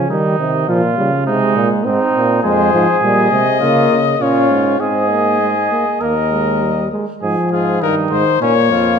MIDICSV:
0, 0, Header, 1, 5, 480
1, 0, Start_track
1, 0, Key_signature, -4, "major"
1, 0, Tempo, 585938
1, 80, Time_signature, 4, 2, 24, 8
1, 3440, Tempo, 600601
1, 7269, End_track
2, 0, Start_track
2, 0, Title_t, "Trumpet"
2, 0, Program_c, 0, 56
2, 2001, Note_on_c, 0, 72, 69
2, 2443, Note_off_c, 0, 72, 0
2, 2485, Note_on_c, 0, 75, 75
2, 3454, Note_on_c, 0, 73, 61
2, 3466, Note_off_c, 0, 75, 0
2, 3921, Note_off_c, 0, 73, 0
2, 3925, Note_on_c, 0, 75, 61
2, 4873, Note_off_c, 0, 75, 0
2, 4892, Note_on_c, 0, 75, 58
2, 5598, Note_off_c, 0, 75, 0
2, 6092, Note_on_c, 0, 68, 66
2, 6313, Note_off_c, 0, 68, 0
2, 6336, Note_on_c, 0, 70, 67
2, 6441, Note_off_c, 0, 70, 0
2, 6564, Note_on_c, 0, 72, 70
2, 6798, Note_off_c, 0, 72, 0
2, 6814, Note_on_c, 0, 73, 77
2, 7269, Note_off_c, 0, 73, 0
2, 7269, End_track
3, 0, Start_track
3, 0, Title_t, "Trumpet"
3, 0, Program_c, 1, 56
3, 83, Note_on_c, 1, 63, 65
3, 553, Note_off_c, 1, 63, 0
3, 564, Note_on_c, 1, 65, 65
3, 1035, Note_off_c, 1, 65, 0
3, 1039, Note_on_c, 1, 63, 68
3, 1382, Note_off_c, 1, 63, 0
3, 1521, Note_on_c, 1, 63, 74
3, 1986, Note_off_c, 1, 63, 0
3, 1991, Note_on_c, 1, 68, 80
3, 2930, Note_off_c, 1, 68, 0
3, 2952, Note_on_c, 1, 65, 64
3, 3262, Note_off_c, 1, 65, 0
3, 3441, Note_on_c, 1, 65, 69
3, 3918, Note_on_c, 1, 68, 68
3, 3930, Note_off_c, 1, 65, 0
3, 4888, Note_on_c, 1, 70, 62
3, 4900, Note_off_c, 1, 68, 0
3, 5610, Note_off_c, 1, 70, 0
3, 5855, Note_on_c, 1, 68, 60
3, 6075, Note_off_c, 1, 68, 0
3, 6096, Note_on_c, 1, 65, 56
3, 6325, Note_on_c, 1, 63, 61
3, 6337, Note_off_c, 1, 65, 0
3, 6802, Note_off_c, 1, 63, 0
3, 6808, Note_on_c, 1, 61, 60
3, 6915, Note_off_c, 1, 61, 0
3, 7045, Note_on_c, 1, 65, 63
3, 7268, Note_off_c, 1, 65, 0
3, 7269, End_track
4, 0, Start_track
4, 0, Title_t, "Trombone"
4, 0, Program_c, 2, 57
4, 75, Note_on_c, 2, 55, 73
4, 313, Note_off_c, 2, 55, 0
4, 319, Note_on_c, 2, 51, 65
4, 555, Note_off_c, 2, 51, 0
4, 561, Note_on_c, 2, 53, 75
4, 670, Note_off_c, 2, 53, 0
4, 793, Note_on_c, 2, 55, 63
4, 904, Note_off_c, 2, 55, 0
4, 1038, Note_on_c, 2, 56, 86
4, 1514, Note_on_c, 2, 60, 88
4, 1527, Note_off_c, 2, 56, 0
4, 1989, Note_off_c, 2, 60, 0
4, 1994, Note_on_c, 2, 56, 80
4, 2230, Note_off_c, 2, 56, 0
4, 2244, Note_on_c, 2, 53, 71
4, 2349, Note_off_c, 2, 53, 0
4, 2480, Note_on_c, 2, 55, 79
4, 2710, Note_off_c, 2, 55, 0
4, 2719, Note_on_c, 2, 56, 65
4, 2826, Note_off_c, 2, 56, 0
4, 2959, Note_on_c, 2, 58, 79
4, 3265, Note_off_c, 2, 58, 0
4, 3442, Note_on_c, 2, 61, 77
4, 3888, Note_off_c, 2, 61, 0
4, 3921, Note_on_c, 2, 60, 57
4, 4166, Note_on_c, 2, 58, 54
4, 4178, Note_off_c, 2, 60, 0
4, 4405, Note_off_c, 2, 58, 0
4, 4410, Note_on_c, 2, 56, 56
4, 4518, Note_off_c, 2, 56, 0
4, 4651, Note_on_c, 2, 58, 50
4, 4759, Note_off_c, 2, 58, 0
4, 4890, Note_on_c, 2, 58, 55
4, 4998, Note_off_c, 2, 58, 0
4, 5129, Note_on_c, 2, 56, 57
4, 5373, Note_on_c, 2, 55, 57
4, 5385, Note_off_c, 2, 56, 0
4, 5610, Note_off_c, 2, 55, 0
4, 5615, Note_on_c, 2, 56, 54
4, 5722, Note_off_c, 2, 56, 0
4, 5855, Note_on_c, 2, 53, 60
4, 6334, Note_on_c, 2, 51, 63
4, 6346, Note_off_c, 2, 53, 0
4, 6800, Note_off_c, 2, 51, 0
4, 6805, Note_on_c, 2, 58, 75
4, 7269, Note_off_c, 2, 58, 0
4, 7269, End_track
5, 0, Start_track
5, 0, Title_t, "Euphonium"
5, 0, Program_c, 3, 58
5, 80, Note_on_c, 3, 51, 67
5, 316, Note_off_c, 3, 51, 0
5, 323, Note_on_c, 3, 48, 62
5, 563, Note_on_c, 3, 46, 62
5, 575, Note_off_c, 3, 48, 0
5, 795, Note_off_c, 3, 46, 0
5, 800, Note_on_c, 3, 49, 65
5, 1043, Note_on_c, 3, 48, 66
5, 1055, Note_off_c, 3, 49, 0
5, 1275, Note_off_c, 3, 48, 0
5, 1280, Note_on_c, 3, 46, 64
5, 1388, Note_off_c, 3, 46, 0
5, 1521, Note_on_c, 3, 44, 62
5, 1628, Note_off_c, 3, 44, 0
5, 1759, Note_on_c, 3, 46, 67
5, 1994, Note_off_c, 3, 46, 0
5, 1998, Note_on_c, 3, 41, 67
5, 2232, Note_off_c, 3, 41, 0
5, 2239, Note_on_c, 3, 44, 70
5, 2346, Note_off_c, 3, 44, 0
5, 2475, Note_on_c, 3, 46, 65
5, 2708, Note_off_c, 3, 46, 0
5, 2712, Note_on_c, 3, 48, 69
5, 2954, Note_on_c, 3, 49, 67
5, 2966, Note_off_c, 3, 48, 0
5, 3191, Note_off_c, 3, 49, 0
5, 3196, Note_on_c, 3, 49, 62
5, 3427, Note_off_c, 3, 49, 0
5, 3432, Note_on_c, 3, 46, 52
5, 3672, Note_on_c, 3, 44, 57
5, 3684, Note_off_c, 3, 46, 0
5, 3910, Note_off_c, 3, 44, 0
5, 3915, Note_on_c, 3, 44, 59
5, 4645, Note_off_c, 3, 44, 0
5, 4888, Note_on_c, 3, 39, 52
5, 5578, Note_off_c, 3, 39, 0
5, 5854, Note_on_c, 3, 44, 61
5, 5961, Note_off_c, 3, 44, 0
5, 6095, Note_on_c, 3, 44, 57
5, 6326, Note_off_c, 3, 44, 0
5, 6330, Note_on_c, 3, 43, 60
5, 6559, Note_off_c, 3, 43, 0
5, 6564, Note_on_c, 3, 44, 58
5, 6672, Note_off_c, 3, 44, 0
5, 6799, Note_on_c, 3, 46, 61
5, 7040, Note_on_c, 3, 41, 56
5, 7052, Note_off_c, 3, 46, 0
5, 7269, Note_off_c, 3, 41, 0
5, 7269, End_track
0, 0, End_of_file